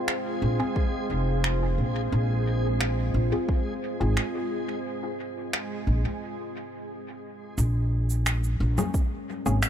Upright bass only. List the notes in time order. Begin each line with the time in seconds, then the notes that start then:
0.42 A#1
1.10 F1
1.78 A#1
2.12 A#1
3.14 A#1
4.01 G#1
5.87 A#1
7.58 A#1
8.60 A#1
9.46 G#1